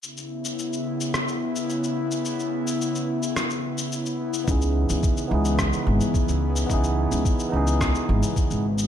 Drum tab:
SH |xx-xxx-xxx-xxx-x|xx-xxx-xxx-xxx-x|xx-xxx-xxx-xxx-x|xx-xxx-xxx-xxx-x|
SD |--------r-------|--------r-------|--------r-------|--------r-------|
BD |----------------|----------------|o---o---o---o---|o---o---o---o---|